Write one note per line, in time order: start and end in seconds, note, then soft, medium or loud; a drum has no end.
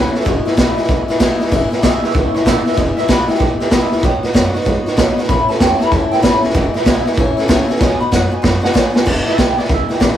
0.00 0.15 A2 medium
0.00 0.15 E3 medium
0.00 0.15 A3 medium
0.00 0.14 C#4 medium
0.00 0.13 E4 medium
0.00 0.14 B4 loud
0.14 0.26 A3 soft
0.14 0.26 C#4 medium
0.14 0.25 E4 soft
0.14 0.27 A4 medium
0.14 muted upright bass stroke medium
0.14 snare soft
0.20 snare soft
0.25 0.40 E1 loud
0.25 0.46 E2 medium
0.25 0.46 B2 medium
0.25 0.46 E3 medium
0.25 0.46 G#3 medium
0.25 0.45 B3 medium
0.25 0.44 E4 medium
0.25 0.47 F#4 medium
0.25 kick loud
0.25 snare soft
0.45 0.56 E3 soft
0.45 0.56 G#3 soft
0.45 0.57 B3 medium
0.45 0.57 E4 medium
0.45 0.58 E4 loud
0.45 muted upright bass stroke medium
0.45 snare soft
0.57 0.72 B1 medium
0.57 0.77 E2 medium
0.57 0.77 B2 medium
0.57 0.78 E3 medium
0.57 0.77 G#3 medium
0.57 0.76 B3 medium
0.57 0.75 E4 medium
0.57 1.50 E4 loud
0.57 kick medium
0.57 snare loud
0.57 hi-hat pedal medium
0.77 0.87 E3 soft
0.77 0.88 G#3 medium
0.77 0.88 B3 medium
0.77 0.88 E4 medium
0.77 muted upright bass stroke medium
0.77 snare soft
0.83 snare soft
0.88 1.03 B1 medium
0.88 1.09 E3 medium
0.88 1.09 G#3 medium
0.88 1.08 B3 medium
0.88 1.07 E4 medium
0.88 kick loud
0.88 snare soft
1.08 1.19 E3 medium
1.08 1.19 G#3 medium
1.08 1.20 B3 medium
1.08 1.20 E4 medium
1.08 muted upright bass stroke medium
1.08 snare soft
1.20 1.35 C#2 loud
1.20 1.40 E2 medium
1.20 1.40 B2 loud
1.20 1.41 E3 loud
1.20 1.40 G#3 medium
1.20 1.39 B3 loud
1.20 1.38 E4 loud
1.20 kick medium
1.20 snare loud
1.20 hi-hat pedal medium
1.40 1.49 D2 medium
1.40 1.51 E3 soft
1.40 1.51 G#3 medium
1.40 1.52 B3 soft
1.40 1.51 E4 medium
1.40 snare soft
1.46 snare soft
1.51 1.66 E1 loud
1.51 1.72 E2 medium
1.51 1.72 B2 medium
1.51 1.71 E3 medium
1.51 1.71 G#3 medium
1.51 1.71 B3 medium
1.51 1.69 E4 loud
1.51 kick loud
1.51 snare soft
1.71 1.82 E3 medium
1.71 1.82 G#3 medium
1.71 1.82 B3 medium
1.71 1.83 E4 medium
1.71 muted upright bass stroke medium
1.71 snare soft
1.82 1.98 B1 medium
1.82 2.03 E2 medium
1.82 2.03 B2 medium
1.82 2.03 E3 medium
1.82 2.03 G#3 medium
1.82 2.03 B3 medium
1.82 2.01 E4 medium
1.82 2.01 G#4 medium
1.82 2.02 E5 loud
1.82 kick loud
1.82 snare loud
1.82 hi-hat pedal loud
2.03 2.13 E3 soft
2.03 2.13 G#3 medium
2.03 2.14 B3 medium
2.03 2.14 E4 medium
2.03 2.13 G#4 medium
2.03 2.15 E5 loud
2.03 muted upright bass stroke medium
2.03 snare soft
2.09 snare soft
2.14 2.29 C#2 medium
2.14 2.34 E3 medium
2.14 2.35 G#3 medium
2.14 2.34 B3 medium
2.14 2.33 E4 loud
2.14 2.33 E4 medium
2.14 2.34 C#5 loud
2.14 kick loud
2.14 snare soft
2.34 2.45 E3 medium
2.34 2.45 G#3 medium
2.34 2.46 B3 medium
2.34 2.45 E4 medium
2.34 2.46 E4 medium
2.34 2.45 C#5 medium
2.34 muted upright bass stroke medium
2.34 snare soft
2.45 2.60 G#1 medium
2.45 2.66 E2 medium
2.45 2.66 B2 medium
2.45 2.66 E3 medium
2.45 2.66 G#3 medium
2.45 2.65 B3 medium
2.45 2.64 E4 medium
2.45 2.76 E5 loud
2.45 kick medium
2.45 snare loud
2.45 hi-hat pedal medium
2.66 2.76 E3 soft
2.66 2.77 G#3 soft
2.66 2.77 B3 soft
2.66 2.77 E4 medium
2.66 muted upright bass stroke medium
2.66 snare soft
2.72 snare soft
2.77 2.92 E1 loud
2.77 2.97 E2 medium
2.77 2.97 B2 medium
2.77 2.97 E3 medium
2.77 2.97 G#3 medium
2.77 2.96 B3 medium
2.77 2.96 E4 medium
2.77 kick loud
2.77 snare soft
2.97 3.07 E3 soft
2.97 3.08 G#3 medium
2.97 3.08 B3 medium
2.97 3.08 E4 medium
2.97 3.08 E5 loud
2.97 muted upright bass stroke medium
2.97 snare soft
3.08 3.23 B1 medium
3.08 3.29 E2 medium
3.08 3.29 B2 medium
3.08 3.29 E3 medium
3.08 3.28 G#3 medium
3.08 3.27 B3 medium
3.08 3.27 E4 medium
3.08 3.28 B4 loud
3.08 kick medium
3.08 snare loud
3.08 hi-hat pedal medium
3.28 3.38 E3 medium
3.28 3.39 G#3 medium
3.28 3.40 B3 medium
3.28 3.40 E4 medium
3.28 3.70 G4 medium
3.28 snare soft
3.34 snare soft
3.39 3.55 B1 loud
3.39 3.60 E3 medium
3.39 3.61 G#3 medium
3.39 3.60 B3 medium
3.39 3.59 E4 medium
3.39 kick loud
3.39 snare soft
3.60 3.71 E3 soft
3.60 3.71 G#3 medium
3.60 3.71 B3 soft
3.60 3.71 E4 medium
3.60 muted upright bass stroke medium
3.60 snare soft
3.71 3.86 C#2 medium
3.71 3.92 E2 medium
3.71 3.92 B2 medium
3.71 3.92 E3 medium
3.71 3.92 G#3 medium
3.71 3.92 B3 medium
3.71 4.02 E4 loud
3.71 3.91 E4 medium
3.71 kick medium
3.71 snare loud
3.71 hi-hat pedal medium
3.92 4.00 D2 medium
3.92 4.03 E3 soft
3.92 4.03 G#3 soft
3.92 4.03 B3 soft
3.92 4.03 E4 medium
3.92 snare soft
3.98 snare soft
4.02 4.18 B1 loud
4.02 4.23 B2 medium
4.02 4.23 F#3 medium
4.02 4.24 B3 medium
4.02 4.23 D#4 medium
4.02 4.22 F#4 medium
4.02 4.22 G4 medium
4.02 kick loud
4.02 snare soft
4.22 4.33 B3 soft
4.22 4.34 D#4 medium
4.22 5.14 F#4 loud
4.22 4.34 F#4 medium
4.22 muted upright bass stroke medium
4.22 snare soft
4.34 4.49 F#2 medium
4.34 4.54 B2 medium
4.34 4.55 F#3 medium
4.34 4.55 B3 medium
4.34 4.54 D#4 medium
4.34 4.53 F#4 medium
4.34 kick medium
4.34 snare loud
4.34 hi-hat pedal medium
4.54 4.65 B3 soft
4.54 4.65 D#4 medium
4.54 4.66 F#4 medium
4.54 muted upright bass stroke medium
4.54 snare soft
4.61 snare soft
4.65 4.80 G#2 loud
4.65 4.86 F#3 medium
4.65 4.86 B3 medium
4.65 4.86 D#4 medium
4.65 4.85 F#4 medium
4.65 kick loud
4.65 snare soft
4.86 4.97 B3 medium
4.86 4.97 D#4 medium
4.86 4.97 F#4 medium
4.86 muted upright bass stroke medium
4.86 snare soft
4.97 5.12 B1 loud
4.97 5.17 B2 medium
4.97 5.18 F#3 medium
4.97 5.18 B3 loud
4.97 5.18 D#4 medium
4.97 5.17 F#4 loud
4.97 kick medium
4.97 snare loud
4.97 hi-hat pedal medium
5.18 5.29 B3 medium
5.18 5.29 D#4 soft
5.18 5.29 F#4 medium
5.18 muted upright bass stroke medium
5.18 snare soft
5.24 snare soft
5.29 5.43 A1 medium
5.29 5.49 A2 medium
5.29 5.49 E3 medium
5.29 5.49 A3 medium
5.29 5.48 C#4 medium
5.29 5.47 E4 medium
5.29 5.49 B5 loud
5.29 kick loud
5.29 snare soft
5.48 5.60 A3 soft
5.48 5.60 C#4 medium
5.48 5.60 E4 medium
5.48 5.60 A5 loud
5.48 muted upright bass stroke medium
5.48 snare soft
5.60 5.75 E2 medium
5.60 5.80 A2 medium
5.60 5.81 E3 medium
5.60 5.81 A3 medium
5.60 5.80 C#4 medium
5.60 5.79 E4 medium
5.60 5.80 G5 loud
5.60 kick medium
5.60 snare loud
5.60 hi-hat pedal medium
5.80 5.91 A3 medium
5.80 5.92 C#4 soft
5.80 5.91 E4 medium
5.80 5.92 B5 loud
5.80 muted upright bass stroke medium
5.80 snare soft
5.91 6.06 E2 medium
5.91 6.12 E3 medium
5.91 6.12 A3 medium
5.91 6.12 C#4 medium
5.91 6.10 E4 medium
5.91 6.12 A5 loud
5.91 kick loud
5.91 snare soft
6.11 6.22 A3 soft
6.11 6.22 C#4 medium
6.11 6.23 E4 medium
6.11 6.22 G5 medium
6.11 muted upright bass stroke medium
6.11 snare soft
6.22 6.38 F#2 medium
6.22 6.43 A2 medium
6.22 6.43 E3 medium
6.22 6.43 A3 medium
6.22 6.43 C#4 medium
6.22 6.41 E4 medium
6.22 6.43 B5 loud
6.22 kick medium
6.22 snare loud
6.22 hi-hat pedal medium
6.43 6.52 D2 medium
6.43 6.55 A3 soft
6.43 6.55 C#4 soft
6.43 6.54 E4 medium
6.43 6.54 A5 loud
6.43 snare soft
6.49 snare soft
6.54 6.69 E1 loud
6.54 6.75 E2 medium
6.54 6.75 B2 medium
6.54 6.75 E3 medium
6.54 6.75 G#3 medium
6.54 6.74 B3 medium
6.54 6.73 E4 medium
6.54 6.74 G5 loud
6.54 kick loud
6.54 snare soft
6.74 6.85 E3 soft
6.74 6.85 G#3 soft
6.74 6.85 B3 medium
6.74 6.86 E4 medium
6.74 7.66 E5 loud
6.74 muted upright bass stroke medium
6.74 snare soft
6.85 7.00 B1 medium
6.85 7.06 E2 medium
6.85 7.06 B2 medium
6.85 7.06 E3 medium
6.85 7.06 G#3 medium
6.85 7.05 B3 medium
6.85 7.04 E4 medium
6.85 kick medium
6.85 snare loud
6.85 hi-hat pedal medium
7.05 7.15 E3 soft
7.05 7.17 G#3 medium
7.05 7.18 B3 medium
7.05 7.17 E4 medium
7.05 snare soft
7.12 snare soft
7.17 7.32 A1 loud
7.17 7.37 E3 medium
7.17 7.38 A3 medium
7.17 7.37 C#4 medium
7.17 7.36 E4 medium
7.17 kick loud
7.17 snare soft
7.37 7.48 A3 medium
7.37 7.48 C#4 medium
7.37 7.49 E4 medium
7.37 muted upright bass stroke medium
7.37 snare soft
7.48 7.63 C#2 medium
7.48 7.69 A2 medium
7.48 7.69 E3 medium
7.48 7.69 A3 medium
7.48 7.68 C#4 loud
7.48 7.67 E4 loud
7.48 kick medium
7.48 snare loud
7.48 hi-hat pedal medium
7.68 7.81 A3 medium
7.68 7.81 C#4 medium
7.68 7.80 E4 medium
7.68 muted upright bass stroke medium
7.68 snare soft
7.76 snare soft
7.80 7.95 B1 loud
7.80 8.01 B2 medium
7.80 8.01 F#3 medium
7.80 8.01 B3 medium
7.80 8.01 D#4 medium
7.80 7.99 F#4 loud
7.80 8.00 G#5 loud
7.80 kick loud
7.80 snare medium
8.00 8.11 B3 soft
8.00 8.11 D#4 medium
8.00 8.12 F#4 medium
8.00 8.11 B5 loud
8.00 muted upright bass stroke medium
8.12 8.27 F#2 medium
8.12 8.32 B2 medium
8.12 8.32 F#3 medium
8.12 8.32 B3 medium
8.12 8.31 D#4 medium
8.12 8.30 F#4 medium
8.12 8.32 F#5 loud
8.12 kick medium
8.12 snare medium
8.12 hi-hat pedal medium
8.31 8.42 B3 medium
8.31 8.42 D#4 medium
8.31 8.43 F#4 medium
8.31 8.43 G#5 loud
8.42 8.58 F#2 medium
8.42 8.63 F#3 medium
8.42 8.63 B3 medium
8.42 8.62 D#4 medium
8.42 8.60 F#4 medium
8.42 8.63 B5 loud
8.42 kick loud
8.42 snare medium
8.62 8.73 B3 soft
8.62 8.74 D#4 medium
8.62 8.74 F#4 medium
8.62 8.74 F#5 loud
8.62 muted upright bass stroke medium
8.62 snare medium
8.73 8.90 G#2 loud
8.73 8.94 B2 medium
8.73 8.95 F#3 medium
8.73 8.95 B3 medium
8.73 8.94 D#4 medium
8.73 8.93 F#4 medium
8.73 8.94 G#5 loud
8.73 kick loud
8.73 snare loud
8.73 hi-hat pedal medium
8.94 9.04 D#2 medium
8.94 9.05 B3 soft
8.94 9.06 D#4 medium
8.94 9.06 F#4 medium
8.94 9.06 G#5 loud
8.94 snare loud
9.05 9.21 E1 loud
9.05 9.26 E2 medium
9.05 9.26 B2 medium
9.05 9.26 E3 medium
9.05 9.26 G#3 medium
9.05 9.26 B3 medium
9.05 9.25 E4 medium
9.05 kick loud
9.05 snare soft
9.05 crash loud
9.26 9.37 E3 soft
9.26 9.37 G#3 medium
9.26 9.38 B3 medium
9.26 9.38 E4 medium
9.26 9.38 E5 medium
9.26 muted upright bass stroke medium
9.26 snare soft
9.38 9.53 B1 medium
9.38 9.58 E2 medium
9.38 9.58 B2 medium
9.38 9.58 E3 medium
9.38 9.58 G#3 medium
9.38 9.57 B3 medium
9.38 9.57 E4 medium
9.38 9.58 G5 medium
9.38 kick medium
9.38 snare loud
9.38 hi-hat pedal medium
9.58 9.68 E3 soft
9.58 9.69 G#3 soft
9.58 9.69 B3 soft
9.58 9.69 E4 medium
9.58 9.70 D5 medium
9.58 muted upright bass stroke medium
9.58 snare soft
9.64 snare soft
9.69 9.84 C#2 medium
9.69 9.89 E3 medium
9.69 9.89 G#3 medium
9.69 9.88 B3 medium
9.69 9.87 E4 medium
9.69 9.90 E5 medium
9.69 kick loud
9.69 snare soft
9.89 10.00 E3 soft
9.89 10.00 G#3 medium
9.89 10.00 B3 medium
9.89 10.00 E4 medium
9.89 10.01 G5 medium
9.89 muted upright bass stroke medium
9.89 snare soft
10.00 10.15 G#1 medium
10.00 10.17 E2 medium
10.00 10.17 B2 medium
10.00 10.17 E3 medium
10.00 10.17 G#3 medium
10.00 10.17 B3 medium
10.00 10.17 E4 medium
10.00 10.17 D5 medium
10.00 kick medium
10.00 snare loud
10.00 hi-hat pedal medium